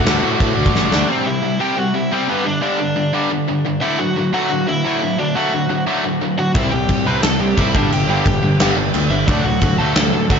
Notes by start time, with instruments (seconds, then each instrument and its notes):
Already playing: distorted electric guitar D3 A3 D4 F#4, overdriven electric guitar F#4 F#5
0.05 picked electric bass D2, snare, crash
0.23 picked electric bass A2, distorted electric guitar D3 A3 D4 F#4
0.40 picked electric bass A2, kick, crash
0.59 picked electric bass D2
0.66 kick
0.75 picked electric bass A1, snare
0.92 picked electric bass D2, overdriven electric guitar D4 D5, snare
1.08 distorted electric guitar C3 G3 C4, overdriven electric guitar C4 C5
1.25 distorted electric guitar C3 G3, overdriven electric guitar E4 E5
1.42 distorted electric guitar C3 G3
1.59 distorted electric guitar C3 G3 C4, overdriven electric guitar G4 G5
1.76 distorted electric guitar C3 G3, overdriven electric guitar F#4 F#5
1.94 distorted electric guitar C3 G3, overdriven electric guitar E4 E5
2.12 distorted electric guitar C3 G3 C4, overdriven electric guitar C4 C5
2.29 distorted electric guitar G2 D3 G3, overdriven electric guitar B3 B4
2.45 distorted electric guitar G2 D3, overdriven electric guitar D4 D5
2.62 distorted electric guitar G2 D3 G3, overdriven electric guitar D4 D5
2.80 distorted electric guitar G2 D3
2.96 distorted electric guitar G2 D3
3.13 distorted electric guitar G2 D3 G3
3.31 distorted electric guitar G2 D3
3.48 distorted electric guitar G2 D3
3.65 distorted electric guitar G2 D3
3.81 distorted electric guitar D3 F#3 A3, overdriven electric guitar E4 E5
3.99 distorted electric guitar D3 F#3, overdriven electric guitar F#4 F#5
4.18 distorted electric guitar D3 F#3
4.34 distorted electric guitar D3 F#3 A3, overdriven electric guitar F#4 F#5
4.51 distorted electric guitar D3 F#3
4.68 distorted electric guitar D3 F#3, overdriven electric guitar E4 E5
4.86 distorted electric guitar D3 F#3 A3
5.02 distorted electric guitar D3 F#3
5.19 distorted electric guitar D3 F#3, overdriven electric guitar D4 D5
5.35 distorted electric guitar D3 F#3 A3, overdriven electric guitar F#4 F#5
5.54 distorted electric guitar D3 F#3
5.69 distorted electric guitar D3 F#3
5.87 distorted electric guitar D3 F#3 A3
6.05 distorted electric guitar D3 F#3
6.21 distorted electric guitar D3 F#3
6.38 distorted electric guitar D3 F#3, overdriven electric guitar F#4 F#5
6.54 picked electric bass C2, distorted electric guitar C3 G3 C4, overdriven electric guitar E4 E5, kick, crash
6.72 picked electric bass C2, distorted electric guitar C3 G3, overdriven electric guitar G4 G5
6.89 picked electric bass C2, distorted electric guitar C3 G3, kick, crash
7.06 picked electric bass C2, distorted electric guitar C3 G3 C4, overdriven electric guitar B4 B5
7.22 picked electric bass C2, distorted electric guitar C3 G3, overdriven electric guitar A4 A5, snare, crash
7.40 picked electric bass C2, distorted electric guitar C3 G3, overdriven electric guitar G4 G5
7.57 picked electric bass C2, distorted electric guitar C3 G3 C4, overdriven electric guitar E4 E5, kick, crash
7.74 picked electric bass G1, distorted electric guitar G2 D3 G3, overdriven electric guitar D4 D5, kick
7.90 picked electric bass G1, distorted electric guitar G2 D3, overdriven electric guitar G4 G5, crash
8.07 picked electric bass G1, distorted electric guitar G2 D3 G3, overdriven electric guitar G4 G5
8.26 picked electric bass G1, distorted electric guitar G2 D3, kick, crash
8.43 picked electric bass G1, distorted electric guitar G2 D3
8.59 picked electric bass G1, distorted electric guitar G2 D3 G3, snare, crash
8.77 picked electric bass G1, distorted electric guitar G2 D3
8.94 picked electric bass D2, distorted electric guitar G2 D3, crash
9.10 picked electric bass G1, distorted electric guitar G2 D3, overdriven electric guitar E4 E5
9.27 picked electric bass D2, distorted electric guitar D3 F#3 A3, overdriven electric guitar D4 D5, kick, crash
9.44 picked electric bass D2, distorted electric guitar D3 F#3, overdriven electric guitar F#4 F#5
9.61 picked electric bass D2, distorted electric guitar D3 F#3, kick, crash
9.78 picked electric bass D2, distorted electric guitar D3 F#3 A3, overdriven electric guitar A4 A5
9.96 picked electric bass D2, distorted electric guitar D3 F#3, snare, crash
10.13 picked electric bass D2, distorted electric guitar D3 F#3
10.29 picked electric bass D2, distorted electric guitar D3 F#3 A3, overdriven electric guitar F#4 F#5, kick, crash